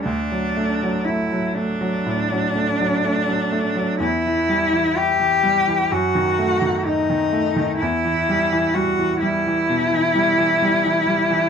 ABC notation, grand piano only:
X:1
M:4/4
L:1/16
Q:1/4=63
K:Edor
V:1 name="Grand piano" clef=bass
D,, F, A, F, A, F, A, F, A,, F, A, F, A, F, A, F, | E,, E, G, E, E E, G, E, F,, ^D, A, D, ^D D, A, D, | E,, E, G, E, G, E, G, E, B,, E, G, E, G, E, G, E, |]